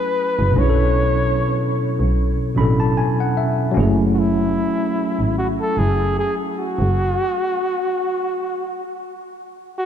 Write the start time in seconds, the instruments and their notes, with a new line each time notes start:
Already playing: tine electric piano F#3 A3 C#4 E4 G#5, flugelhorn B4
0.39 double bass F#1
0.51 tine electric piano B2 F#3
0.56 double bass B1, tine electric piano C#4 D4, flugelhorn C#5
0.61 tine electric piano E4 G#4
0.70 tine electric piano A4
1.99 double bass B1
2.55 double bass A1, tine electric piano B2 F#3 C#4 D4 B5
2.59 tine electric piano E4 A4
2.80 tine electric piano A5
2.97 tine electric piano G#5
3.20 tine electric piano F#5
3.37 tine electric piano E5
3.71 tine electric piano F#3 C#4
3.77 double bass F#1, tine electric piano E4 G#4
3.83 tine electric piano A3
4.13 flugelhorn F#4
4.19 flugelhorn E4
5.19 double bass G#1
5.38 flugelhorn F#4
5.61 flugelhorn A4
5.77 double bass F#1, flugelhorn G#4
6.19 flugelhorn G#4
6.59 flugelhorn F#4
6.79 double bass F#1
9.78 flugelhorn F#4